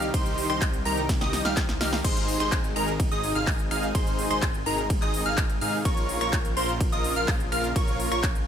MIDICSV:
0, 0, Header, 1, 6, 480
1, 0, Start_track
1, 0, Key_signature, -4, "major"
1, 0, Tempo, 476190
1, 141, Time_signature, 4, 2, 24, 8
1, 8542, End_track
2, 0, Start_track
2, 0, Title_t, "Digital synth lead"
2, 0, Program_c, 0, 84
2, 140, Note_on_c, 0, 84, 90
2, 472, Note_off_c, 0, 84, 0
2, 500, Note_on_c, 0, 84, 101
2, 658, Note_off_c, 0, 84, 0
2, 861, Note_on_c, 0, 82, 109
2, 1018, Note_off_c, 0, 82, 0
2, 1221, Note_on_c, 0, 87, 111
2, 1425, Note_off_c, 0, 87, 0
2, 1461, Note_on_c, 0, 89, 101
2, 1618, Note_off_c, 0, 89, 0
2, 1821, Note_on_c, 0, 89, 86
2, 1978, Note_off_c, 0, 89, 0
2, 2061, Note_on_c, 0, 84, 87
2, 2392, Note_off_c, 0, 84, 0
2, 2422, Note_on_c, 0, 84, 103
2, 2579, Note_off_c, 0, 84, 0
2, 2781, Note_on_c, 0, 82, 106
2, 2938, Note_off_c, 0, 82, 0
2, 3141, Note_on_c, 0, 87, 108
2, 3345, Note_off_c, 0, 87, 0
2, 3380, Note_on_c, 0, 89, 104
2, 3538, Note_off_c, 0, 89, 0
2, 3740, Note_on_c, 0, 89, 88
2, 3898, Note_off_c, 0, 89, 0
2, 3980, Note_on_c, 0, 84, 90
2, 4312, Note_off_c, 0, 84, 0
2, 4339, Note_on_c, 0, 84, 104
2, 4498, Note_off_c, 0, 84, 0
2, 4700, Note_on_c, 0, 82, 109
2, 4858, Note_off_c, 0, 82, 0
2, 5059, Note_on_c, 0, 87, 109
2, 5264, Note_off_c, 0, 87, 0
2, 5300, Note_on_c, 0, 89, 104
2, 5458, Note_off_c, 0, 89, 0
2, 5659, Note_on_c, 0, 89, 84
2, 5817, Note_off_c, 0, 89, 0
2, 5899, Note_on_c, 0, 85, 90
2, 6231, Note_off_c, 0, 85, 0
2, 6260, Note_on_c, 0, 85, 103
2, 6418, Note_off_c, 0, 85, 0
2, 6620, Note_on_c, 0, 84, 108
2, 6778, Note_off_c, 0, 84, 0
2, 6980, Note_on_c, 0, 87, 110
2, 7184, Note_off_c, 0, 87, 0
2, 7220, Note_on_c, 0, 89, 106
2, 7378, Note_off_c, 0, 89, 0
2, 7580, Note_on_c, 0, 89, 89
2, 7738, Note_off_c, 0, 89, 0
2, 7820, Note_on_c, 0, 85, 89
2, 8152, Note_off_c, 0, 85, 0
2, 8180, Note_on_c, 0, 85, 100
2, 8338, Note_off_c, 0, 85, 0
2, 8542, End_track
3, 0, Start_track
3, 0, Title_t, "Supersaw synth"
3, 0, Program_c, 1, 81
3, 141, Note_on_c, 1, 63, 86
3, 141, Note_on_c, 1, 67, 77
3, 141, Note_on_c, 1, 72, 95
3, 472, Note_off_c, 1, 63, 0
3, 472, Note_off_c, 1, 67, 0
3, 472, Note_off_c, 1, 72, 0
3, 501, Note_on_c, 1, 63, 90
3, 501, Note_on_c, 1, 67, 83
3, 501, Note_on_c, 1, 72, 101
3, 658, Note_off_c, 1, 63, 0
3, 658, Note_off_c, 1, 67, 0
3, 659, Note_off_c, 1, 72, 0
3, 861, Note_on_c, 1, 67, 91
3, 861, Note_on_c, 1, 70, 109
3, 862, Note_on_c, 1, 63, 103
3, 1018, Note_off_c, 1, 67, 0
3, 1018, Note_off_c, 1, 70, 0
3, 1019, Note_off_c, 1, 63, 0
3, 1221, Note_on_c, 1, 63, 96
3, 1221, Note_on_c, 1, 67, 91
3, 1221, Note_on_c, 1, 75, 107
3, 1425, Note_off_c, 1, 63, 0
3, 1425, Note_off_c, 1, 67, 0
3, 1425, Note_off_c, 1, 75, 0
3, 1461, Note_on_c, 1, 63, 96
3, 1462, Note_on_c, 1, 67, 85
3, 1462, Note_on_c, 1, 77, 106
3, 1619, Note_off_c, 1, 63, 0
3, 1619, Note_off_c, 1, 67, 0
3, 1619, Note_off_c, 1, 77, 0
3, 1822, Note_on_c, 1, 63, 77
3, 1822, Note_on_c, 1, 67, 72
3, 1822, Note_on_c, 1, 77, 87
3, 1979, Note_off_c, 1, 63, 0
3, 1979, Note_off_c, 1, 67, 0
3, 1979, Note_off_c, 1, 77, 0
3, 2062, Note_on_c, 1, 63, 82
3, 2062, Note_on_c, 1, 68, 75
3, 2062, Note_on_c, 1, 72, 91
3, 2393, Note_off_c, 1, 63, 0
3, 2393, Note_off_c, 1, 68, 0
3, 2393, Note_off_c, 1, 72, 0
3, 2422, Note_on_c, 1, 63, 93
3, 2422, Note_on_c, 1, 68, 83
3, 2422, Note_on_c, 1, 72, 101
3, 2579, Note_off_c, 1, 63, 0
3, 2579, Note_off_c, 1, 68, 0
3, 2579, Note_off_c, 1, 72, 0
3, 2782, Note_on_c, 1, 63, 98
3, 2782, Note_on_c, 1, 68, 90
3, 2782, Note_on_c, 1, 70, 110
3, 2939, Note_off_c, 1, 63, 0
3, 2939, Note_off_c, 1, 68, 0
3, 2939, Note_off_c, 1, 70, 0
3, 3142, Note_on_c, 1, 63, 100
3, 3142, Note_on_c, 1, 68, 88
3, 3142, Note_on_c, 1, 75, 111
3, 3345, Note_off_c, 1, 63, 0
3, 3345, Note_off_c, 1, 68, 0
3, 3345, Note_off_c, 1, 75, 0
3, 3381, Note_on_c, 1, 63, 91
3, 3381, Note_on_c, 1, 68, 85
3, 3381, Note_on_c, 1, 77, 101
3, 3538, Note_off_c, 1, 63, 0
3, 3538, Note_off_c, 1, 68, 0
3, 3538, Note_off_c, 1, 77, 0
3, 3741, Note_on_c, 1, 63, 80
3, 3741, Note_on_c, 1, 68, 75
3, 3741, Note_on_c, 1, 77, 85
3, 3898, Note_off_c, 1, 63, 0
3, 3898, Note_off_c, 1, 77, 0
3, 3899, Note_off_c, 1, 68, 0
3, 3980, Note_on_c, 1, 63, 82
3, 3980, Note_on_c, 1, 68, 77
3, 3980, Note_on_c, 1, 72, 95
3, 4312, Note_off_c, 1, 63, 0
3, 4312, Note_off_c, 1, 68, 0
3, 4312, Note_off_c, 1, 72, 0
3, 4340, Note_on_c, 1, 63, 90
3, 4341, Note_on_c, 1, 68, 84
3, 4341, Note_on_c, 1, 72, 102
3, 4498, Note_off_c, 1, 63, 0
3, 4498, Note_off_c, 1, 68, 0
3, 4498, Note_off_c, 1, 72, 0
3, 4700, Note_on_c, 1, 63, 99
3, 4700, Note_on_c, 1, 68, 92
3, 4700, Note_on_c, 1, 70, 108
3, 4858, Note_off_c, 1, 63, 0
3, 4858, Note_off_c, 1, 68, 0
3, 4858, Note_off_c, 1, 70, 0
3, 5060, Note_on_c, 1, 63, 99
3, 5060, Note_on_c, 1, 68, 89
3, 5060, Note_on_c, 1, 75, 108
3, 5264, Note_off_c, 1, 63, 0
3, 5264, Note_off_c, 1, 68, 0
3, 5264, Note_off_c, 1, 75, 0
3, 5299, Note_on_c, 1, 63, 92
3, 5299, Note_on_c, 1, 68, 87
3, 5299, Note_on_c, 1, 77, 104
3, 5458, Note_off_c, 1, 63, 0
3, 5458, Note_off_c, 1, 68, 0
3, 5458, Note_off_c, 1, 77, 0
3, 5659, Note_on_c, 1, 63, 78
3, 5659, Note_on_c, 1, 68, 73
3, 5659, Note_on_c, 1, 77, 84
3, 5817, Note_off_c, 1, 77, 0
3, 5818, Note_off_c, 1, 63, 0
3, 5818, Note_off_c, 1, 68, 0
3, 5899, Note_on_c, 1, 65, 82
3, 5899, Note_on_c, 1, 70, 74
3, 5899, Note_on_c, 1, 73, 90
3, 6231, Note_off_c, 1, 65, 0
3, 6231, Note_off_c, 1, 70, 0
3, 6231, Note_off_c, 1, 73, 0
3, 6260, Note_on_c, 1, 65, 93
3, 6260, Note_on_c, 1, 70, 87
3, 6260, Note_on_c, 1, 73, 104
3, 6418, Note_off_c, 1, 65, 0
3, 6418, Note_off_c, 1, 70, 0
3, 6418, Note_off_c, 1, 73, 0
3, 6620, Note_on_c, 1, 65, 98
3, 6620, Note_on_c, 1, 70, 89
3, 6620, Note_on_c, 1, 72, 109
3, 6778, Note_off_c, 1, 65, 0
3, 6778, Note_off_c, 1, 70, 0
3, 6778, Note_off_c, 1, 72, 0
3, 6980, Note_on_c, 1, 65, 102
3, 6980, Note_on_c, 1, 70, 92
3, 6980, Note_on_c, 1, 75, 110
3, 7184, Note_off_c, 1, 65, 0
3, 7184, Note_off_c, 1, 70, 0
3, 7184, Note_off_c, 1, 75, 0
3, 7220, Note_on_c, 1, 65, 93
3, 7220, Note_on_c, 1, 70, 89
3, 7220, Note_on_c, 1, 77, 104
3, 7378, Note_off_c, 1, 65, 0
3, 7378, Note_off_c, 1, 70, 0
3, 7378, Note_off_c, 1, 77, 0
3, 7580, Note_on_c, 1, 77, 85
3, 7581, Note_on_c, 1, 65, 78
3, 7581, Note_on_c, 1, 70, 73
3, 7738, Note_off_c, 1, 65, 0
3, 7738, Note_off_c, 1, 70, 0
3, 7738, Note_off_c, 1, 77, 0
3, 7820, Note_on_c, 1, 70, 75
3, 7820, Note_on_c, 1, 73, 89
3, 7821, Note_on_c, 1, 65, 85
3, 8152, Note_off_c, 1, 65, 0
3, 8152, Note_off_c, 1, 70, 0
3, 8152, Note_off_c, 1, 73, 0
3, 8181, Note_on_c, 1, 65, 93
3, 8181, Note_on_c, 1, 70, 87
3, 8181, Note_on_c, 1, 73, 102
3, 8338, Note_off_c, 1, 65, 0
3, 8338, Note_off_c, 1, 70, 0
3, 8338, Note_off_c, 1, 73, 0
3, 8542, End_track
4, 0, Start_track
4, 0, Title_t, "Analog synth pad"
4, 0, Program_c, 2, 89
4, 0, Note_on_c, 2, 48, 82
4, 0, Note_on_c, 2, 51, 77
4, 0, Note_on_c, 2, 55, 78
4, 0, Note_on_c, 2, 63, 77
4, 0, Note_on_c, 2, 67, 93
4, 2021, Note_off_c, 2, 48, 0
4, 2022, Note_off_c, 2, 51, 0
4, 2022, Note_off_c, 2, 55, 0
4, 2022, Note_off_c, 2, 63, 0
4, 2022, Note_off_c, 2, 67, 0
4, 2062, Note_on_c, 2, 48, 85
4, 2062, Note_on_c, 2, 56, 74
4, 2062, Note_on_c, 2, 68, 92
4, 2063, Note_on_c, 2, 51, 76
4, 2063, Note_on_c, 2, 63, 77
4, 5863, Note_off_c, 2, 48, 0
4, 5863, Note_off_c, 2, 51, 0
4, 5863, Note_off_c, 2, 56, 0
4, 5863, Note_off_c, 2, 63, 0
4, 5863, Note_off_c, 2, 68, 0
4, 5899, Note_on_c, 2, 49, 83
4, 5900, Note_on_c, 2, 53, 77
4, 5900, Note_on_c, 2, 58, 78
4, 5900, Note_on_c, 2, 65, 74
4, 5900, Note_on_c, 2, 70, 92
4, 7801, Note_off_c, 2, 70, 0
4, 8542, Note_off_c, 2, 49, 0
4, 8542, Note_off_c, 2, 53, 0
4, 8542, Note_off_c, 2, 58, 0
4, 8542, Note_off_c, 2, 65, 0
4, 8542, End_track
5, 0, Start_track
5, 0, Title_t, "Detuned saw bass"
5, 0, Program_c, 3, 39
5, 0, Note_on_c, 3, 36, 99
5, 117, Note_off_c, 3, 36, 0
5, 140, Note_on_c, 3, 36, 98
5, 476, Note_off_c, 3, 36, 0
5, 501, Note_on_c, 3, 36, 90
5, 837, Note_off_c, 3, 36, 0
5, 862, Note_on_c, 3, 36, 96
5, 1197, Note_off_c, 3, 36, 0
5, 1221, Note_on_c, 3, 36, 101
5, 1437, Note_off_c, 3, 36, 0
5, 1461, Note_on_c, 3, 36, 100
5, 1797, Note_off_c, 3, 36, 0
5, 1821, Note_on_c, 3, 36, 94
5, 2037, Note_off_c, 3, 36, 0
5, 2061, Note_on_c, 3, 32, 99
5, 2397, Note_off_c, 3, 32, 0
5, 2420, Note_on_c, 3, 32, 93
5, 2756, Note_off_c, 3, 32, 0
5, 2781, Note_on_c, 3, 32, 101
5, 3117, Note_off_c, 3, 32, 0
5, 3141, Note_on_c, 3, 32, 98
5, 3357, Note_off_c, 3, 32, 0
5, 3380, Note_on_c, 3, 32, 99
5, 3717, Note_off_c, 3, 32, 0
5, 3741, Note_on_c, 3, 32, 99
5, 3957, Note_off_c, 3, 32, 0
5, 3980, Note_on_c, 3, 32, 98
5, 4317, Note_off_c, 3, 32, 0
5, 4340, Note_on_c, 3, 32, 91
5, 4677, Note_off_c, 3, 32, 0
5, 4700, Note_on_c, 3, 32, 102
5, 5036, Note_off_c, 3, 32, 0
5, 5060, Note_on_c, 3, 32, 97
5, 5276, Note_off_c, 3, 32, 0
5, 5299, Note_on_c, 3, 32, 100
5, 5636, Note_off_c, 3, 32, 0
5, 5659, Note_on_c, 3, 44, 95
5, 5876, Note_off_c, 3, 44, 0
5, 5900, Note_on_c, 3, 34, 102
5, 6236, Note_off_c, 3, 34, 0
5, 6260, Note_on_c, 3, 34, 93
5, 6596, Note_off_c, 3, 34, 0
5, 6620, Note_on_c, 3, 34, 97
5, 6956, Note_off_c, 3, 34, 0
5, 6980, Note_on_c, 3, 34, 99
5, 7197, Note_off_c, 3, 34, 0
5, 7220, Note_on_c, 3, 34, 97
5, 7557, Note_off_c, 3, 34, 0
5, 7580, Note_on_c, 3, 34, 98
5, 7796, Note_off_c, 3, 34, 0
5, 7820, Note_on_c, 3, 34, 101
5, 8156, Note_off_c, 3, 34, 0
5, 8180, Note_on_c, 3, 34, 92
5, 8516, Note_off_c, 3, 34, 0
5, 8542, End_track
6, 0, Start_track
6, 0, Title_t, "Drums"
6, 21, Note_on_c, 9, 42, 42
6, 122, Note_off_c, 9, 42, 0
6, 140, Note_on_c, 9, 36, 115
6, 141, Note_on_c, 9, 42, 103
6, 141, Note_on_c, 9, 51, 72
6, 241, Note_off_c, 9, 36, 0
6, 241, Note_off_c, 9, 42, 0
6, 241, Note_off_c, 9, 51, 0
6, 261, Note_on_c, 9, 42, 43
6, 362, Note_off_c, 9, 42, 0
6, 381, Note_on_c, 9, 46, 107
6, 482, Note_off_c, 9, 46, 0
6, 501, Note_on_c, 9, 26, 65
6, 501, Note_on_c, 9, 42, 43
6, 602, Note_off_c, 9, 26, 0
6, 602, Note_off_c, 9, 42, 0
6, 620, Note_on_c, 9, 36, 119
6, 621, Note_on_c, 9, 42, 101
6, 621, Note_on_c, 9, 51, 71
6, 622, Note_on_c, 9, 39, 122
6, 721, Note_off_c, 9, 36, 0
6, 722, Note_off_c, 9, 42, 0
6, 722, Note_off_c, 9, 51, 0
6, 723, Note_off_c, 9, 39, 0
6, 741, Note_on_c, 9, 42, 44
6, 842, Note_off_c, 9, 42, 0
6, 861, Note_on_c, 9, 46, 103
6, 962, Note_off_c, 9, 46, 0
6, 981, Note_on_c, 9, 42, 43
6, 1082, Note_off_c, 9, 42, 0
6, 1100, Note_on_c, 9, 36, 120
6, 1102, Note_on_c, 9, 38, 64
6, 1102, Note_on_c, 9, 42, 99
6, 1102, Note_on_c, 9, 51, 70
6, 1201, Note_off_c, 9, 36, 0
6, 1203, Note_off_c, 9, 38, 0
6, 1203, Note_off_c, 9, 42, 0
6, 1203, Note_off_c, 9, 51, 0
6, 1222, Note_on_c, 9, 38, 60
6, 1222, Note_on_c, 9, 42, 44
6, 1323, Note_off_c, 9, 38, 0
6, 1323, Note_off_c, 9, 42, 0
6, 1342, Note_on_c, 9, 38, 75
6, 1342, Note_on_c, 9, 46, 102
6, 1443, Note_off_c, 9, 38, 0
6, 1443, Note_off_c, 9, 46, 0
6, 1462, Note_on_c, 9, 38, 69
6, 1462, Note_on_c, 9, 42, 43
6, 1563, Note_off_c, 9, 38, 0
6, 1563, Note_off_c, 9, 42, 0
6, 1581, Note_on_c, 9, 36, 119
6, 1582, Note_on_c, 9, 38, 86
6, 1582, Note_on_c, 9, 39, 121
6, 1582, Note_on_c, 9, 42, 97
6, 1582, Note_on_c, 9, 51, 71
6, 1682, Note_off_c, 9, 36, 0
6, 1683, Note_off_c, 9, 38, 0
6, 1683, Note_off_c, 9, 39, 0
6, 1683, Note_off_c, 9, 42, 0
6, 1683, Note_off_c, 9, 51, 0
6, 1702, Note_on_c, 9, 38, 77
6, 1702, Note_on_c, 9, 42, 41
6, 1802, Note_off_c, 9, 38, 0
6, 1802, Note_off_c, 9, 42, 0
6, 1822, Note_on_c, 9, 38, 102
6, 1822, Note_on_c, 9, 46, 103
6, 1923, Note_off_c, 9, 38, 0
6, 1923, Note_off_c, 9, 46, 0
6, 1942, Note_on_c, 9, 38, 94
6, 1942, Note_on_c, 9, 46, 61
6, 2043, Note_off_c, 9, 38, 0
6, 2043, Note_off_c, 9, 46, 0
6, 2061, Note_on_c, 9, 36, 117
6, 2062, Note_on_c, 9, 42, 103
6, 2062, Note_on_c, 9, 49, 112
6, 2062, Note_on_c, 9, 51, 70
6, 2162, Note_off_c, 9, 36, 0
6, 2163, Note_off_c, 9, 42, 0
6, 2163, Note_off_c, 9, 49, 0
6, 2163, Note_off_c, 9, 51, 0
6, 2182, Note_on_c, 9, 42, 42
6, 2283, Note_off_c, 9, 42, 0
6, 2302, Note_on_c, 9, 46, 109
6, 2403, Note_off_c, 9, 46, 0
6, 2422, Note_on_c, 9, 26, 64
6, 2422, Note_on_c, 9, 42, 43
6, 2522, Note_off_c, 9, 26, 0
6, 2522, Note_off_c, 9, 42, 0
6, 2541, Note_on_c, 9, 36, 117
6, 2542, Note_on_c, 9, 39, 126
6, 2542, Note_on_c, 9, 42, 97
6, 2542, Note_on_c, 9, 51, 66
6, 2641, Note_off_c, 9, 36, 0
6, 2642, Note_off_c, 9, 42, 0
6, 2642, Note_off_c, 9, 51, 0
6, 2643, Note_off_c, 9, 39, 0
6, 2662, Note_on_c, 9, 42, 44
6, 2763, Note_off_c, 9, 42, 0
6, 2783, Note_on_c, 9, 46, 107
6, 2883, Note_off_c, 9, 46, 0
6, 2903, Note_on_c, 9, 42, 43
6, 3003, Note_off_c, 9, 42, 0
6, 3021, Note_on_c, 9, 36, 122
6, 3022, Note_on_c, 9, 42, 99
6, 3022, Note_on_c, 9, 51, 68
6, 3121, Note_off_c, 9, 36, 0
6, 3123, Note_off_c, 9, 42, 0
6, 3123, Note_off_c, 9, 51, 0
6, 3142, Note_on_c, 9, 42, 44
6, 3242, Note_off_c, 9, 42, 0
6, 3261, Note_on_c, 9, 46, 106
6, 3362, Note_off_c, 9, 46, 0
6, 3381, Note_on_c, 9, 42, 42
6, 3482, Note_off_c, 9, 42, 0
6, 3500, Note_on_c, 9, 36, 122
6, 3501, Note_on_c, 9, 46, 64
6, 3501, Note_on_c, 9, 51, 67
6, 3502, Note_on_c, 9, 39, 127
6, 3601, Note_off_c, 9, 36, 0
6, 3602, Note_off_c, 9, 39, 0
6, 3602, Note_off_c, 9, 46, 0
6, 3602, Note_off_c, 9, 51, 0
6, 3621, Note_on_c, 9, 42, 40
6, 3722, Note_off_c, 9, 42, 0
6, 3741, Note_on_c, 9, 26, 64
6, 3741, Note_on_c, 9, 46, 110
6, 3842, Note_off_c, 9, 26, 0
6, 3842, Note_off_c, 9, 46, 0
6, 3861, Note_on_c, 9, 42, 43
6, 3962, Note_off_c, 9, 42, 0
6, 3980, Note_on_c, 9, 36, 122
6, 3980, Note_on_c, 9, 42, 97
6, 3980, Note_on_c, 9, 51, 68
6, 4081, Note_off_c, 9, 36, 0
6, 4081, Note_off_c, 9, 42, 0
6, 4081, Note_off_c, 9, 51, 0
6, 4101, Note_on_c, 9, 42, 41
6, 4202, Note_off_c, 9, 42, 0
6, 4221, Note_on_c, 9, 46, 110
6, 4321, Note_off_c, 9, 46, 0
6, 4340, Note_on_c, 9, 26, 65
6, 4340, Note_on_c, 9, 42, 41
6, 4441, Note_off_c, 9, 26, 0
6, 4441, Note_off_c, 9, 42, 0
6, 4460, Note_on_c, 9, 36, 122
6, 4460, Note_on_c, 9, 42, 92
6, 4460, Note_on_c, 9, 51, 67
6, 4461, Note_on_c, 9, 39, 125
6, 4561, Note_off_c, 9, 36, 0
6, 4561, Note_off_c, 9, 42, 0
6, 4561, Note_off_c, 9, 51, 0
6, 4562, Note_off_c, 9, 39, 0
6, 4580, Note_on_c, 9, 42, 41
6, 4681, Note_off_c, 9, 42, 0
6, 4699, Note_on_c, 9, 46, 111
6, 4800, Note_off_c, 9, 46, 0
6, 4820, Note_on_c, 9, 42, 41
6, 4921, Note_off_c, 9, 42, 0
6, 4939, Note_on_c, 9, 36, 125
6, 4939, Note_on_c, 9, 42, 98
6, 4939, Note_on_c, 9, 51, 66
6, 5040, Note_off_c, 9, 36, 0
6, 5040, Note_off_c, 9, 42, 0
6, 5040, Note_off_c, 9, 51, 0
6, 5059, Note_on_c, 9, 42, 43
6, 5060, Note_on_c, 9, 39, 41
6, 5160, Note_off_c, 9, 42, 0
6, 5161, Note_off_c, 9, 39, 0
6, 5179, Note_on_c, 9, 46, 112
6, 5280, Note_off_c, 9, 46, 0
6, 5299, Note_on_c, 9, 42, 41
6, 5400, Note_off_c, 9, 42, 0
6, 5419, Note_on_c, 9, 36, 126
6, 5419, Note_on_c, 9, 42, 97
6, 5419, Note_on_c, 9, 51, 67
6, 5420, Note_on_c, 9, 39, 127
6, 5520, Note_off_c, 9, 36, 0
6, 5520, Note_off_c, 9, 42, 0
6, 5520, Note_off_c, 9, 51, 0
6, 5521, Note_off_c, 9, 39, 0
6, 5539, Note_on_c, 9, 42, 38
6, 5640, Note_off_c, 9, 42, 0
6, 5659, Note_on_c, 9, 46, 113
6, 5760, Note_off_c, 9, 46, 0
6, 5779, Note_on_c, 9, 46, 66
6, 5880, Note_off_c, 9, 46, 0
6, 5899, Note_on_c, 9, 36, 126
6, 5899, Note_on_c, 9, 42, 94
6, 5899, Note_on_c, 9, 51, 66
6, 6000, Note_off_c, 9, 36, 0
6, 6000, Note_off_c, 9, 42, 0
6, 6000, Note_off_c, 9, 51, 0
6, 6020, Note_on_c, 9, 42, 39
6, 6120, Note_off_c, 9, 42, 0
6, 6140, Note_on_c, 9, 46, 114
6, 6240, Note_off_c, 9, 46, 0
6, 6260, Note_on_c, 9, 26, 66
6, 6260, Note_on_c, 9, 42, 40
6, 6361, Note_off_c, 9, 26, 0
6, 6361, Note_off_c, 9, 42, 0
6, 6380, Note_on_c, 9, 36, 127
6, 6380, Note_on_c, 9, 42, 89
6, 6380, Note_on_c, 9, 51, 65
6, 6381, Note_on_c, 9, 39, 125
6, 6480, Note_off_c, 9, 36, 0
6, 6481, Note_off_c, 9, 42, 0
6, 6481, Note_off_c, 9, 51, 0
6, 6482, Note_off_c, 9, 39, 0
6, 6500, Note_on_c, 9, 42, 42
6, 6601, Note_off_c, 9, 42, 0
6, 6620, Note_on_c, 9, 46, 113
6, 6721, Note_off_c, 9, 46, 0
6, 6740, Note_on_c, 9, 42, 40
6, 6841, Note_off_c, 9, 42, 0
6, 6860, Note_on_c, 9, 36, 127
6, 6860, Note_on_c, 9, 42, 94
6, 6860, Note_on_c, 9, 51, 66
6, 6960, Note_off_c, 9, 36, 0
6, 6961, Note_off_c, 9, 42, 0
6, 6961, Note_off_c, 9, 51, 0
6, 6980, Note_on_c, 9, 42, 41
6, 7081, Note_off_c, 9, 42, 0
6, 7100, Note_on_c, 9, 46, 113
6, 7201, Note_off_c, 9, 46, 0
6, 7221, Note_on_c, 9, 42, 39
6, 7322, Note_off_c, 9, 42, 0
6, 7340, Note_on_c, 9, 36, 127
6, 7341, Note_on_c, 9, 39, 124
6, 7341, Note_on_c, 9, 46, 65
6, 7341, Note_on_c, 9, 51, 65
6, 7441, Note_off_c, 9, 36, 0
6, 7442, Note_off_c, 9, 39, 0
6, 7442, Note_off_c, 9, 46, 0
6, 7442, Note_off_c, 9, 51, 0
6, 7461, Note_on_c, 9, 42, 37
6, 7562, Note_off_c, 9, 42, 0
6, 7581, Note_on_c, 9, 26, 65
6, 7581, Note_on_c, 9, 46, 110
6, 7682, Note_off_c, 9, 26, 0
6, 7682, Note_off_c, 9, 46, 0
6, 7701, Note_on_c, 9, 42, 39
6, 7802, Note_off_c, 9, 42, 0
6, 7820, Note_on_c, 9, 36, 122
6, 7821, Note_on_c, 9, 42, 91
6, 7821, Note_on_c, 9, 51, 66
6, 7921, Note_off_c, 9, 36, 0
6, 7922, Note_off_c, 9, 42, 0
6, 7922, Note_off_c, 9, 51, 0
6, 7941, Note_on_c, 9, 42, 38
6, 8042, Note_off_c, 9, 42, 0
6, 8061, Note_on_c, 9, 46, 110
6, 8162, Note_off_c, 9, 46, 0
6, 8181, Note_on_c, 9, 26, 71
6, 8181, Note_on_c, 9, 42, 39
6, 8282, Note_off_c, 9, 26, 0
6, 8282, Note_off_c, 9, 42, 0
6, 8300, Note_on_c, 9, 36, 127
6, 8301, Note_on_c, 9, 42, 90
6, 8301, Note_on_c, 9, 51, 65
6, 8302, Note_on_c, 9, 39, 119
6, 8401, Note_off_c, 9, 36, 0
6, 8402, Note_off_c, 9, 42, 0
6, 8402, Note_off_c, 9, 51, 0
6, 8403, Note_off_c, 9, 39, 0
6, 8421, Note_on_c, 9, 42, 40
6, 8522, Note_off_c, 9, 42, 0
6, 8542, End_track
0, 0, End_of_file